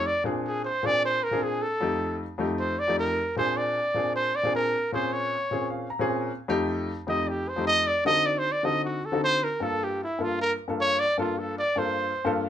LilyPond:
<<
  \new Staff \with { instrumentName = "Trumpet" } { \time 4/4 \key bes \major \tempo 4 = 154 d''8 f'8 aes'8 c''8 d''8 c''8 bes'8 aes'8 | a'4. r4 c''8 d''8 bes'8~ | bes'8 c''8 d''4. c''8 d''8 bes'8~ | bes'8 c''8 des''4. r4. |
r2 ees''8 g'8 c''8 ees''8 | d''8 ees''8 \tuplet 3/2 { d''8 c''8 d''8 } ees''8 fis'8 a'8 c''8 | bes'8 a'8 g'8 e'8 f'8 bes'8 r8 des''8 | d''8 f'8 a'8 d''8 c''4. r8 | }
  \new Staff \with { instrumentName = "Grand piano" } { \time 4/4 \key bes \major << { r1 | r1 | r1 | r2 r8 f''8 bes''4 |
r1 | r1 | r1 | r1 | } \\ { r8 <bes, c' d' aes'>4 r8 <bes, c' d' aes'>4 r16 <bes, c' d' aes'>8. | r8 <f, a ees' g'>4 r8 <f, a ees' g'>4 r16 <f, a ees' g'>8. | r8 <bes, c' d' aes'>4 r8 <bes, c' d' aes'>4 r16 <bes, c' d' aes'>8. | r8 <bes, c' des' aes'>4 r8 <bes, c' des' aes'>4 r16 <bes, c' des' aes'>8. |
r8 <f, a ees' g'>4 r8 <f, a ees' g'>4 r16 <f, a ees' g'>8. | r8 <d c' ees' fis' a'>4 r8 <d c' ees' fis' a'>4 r16 <d c' ees' fis' a'>8. | r8 <g, bes f' a'>4 r8 <g, bes f' a'>4 r16 <g, bes f' a'>8. | r8 <g, bes f' a'>4 r8 <g, bes f' a'>4 r16 <g, bes f' a'>8. | } >> }
>>